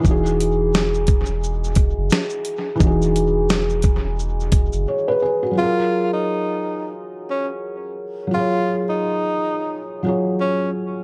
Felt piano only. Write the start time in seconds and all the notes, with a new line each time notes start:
0.00 E3 D#4
0.07 F#4 G#4
2.76 E3 D#4
2.83 F#4 G#4
4.88 C#5
5.08 B4
5.22 G#4
5.43 F#4
5.51 F#3
5.55 F4 G#4
5.63 A#4
8.27 F#3 F4
8.35 G#4
8.39 C#5
10.03 F#3 F4 G#4
10.08 C#5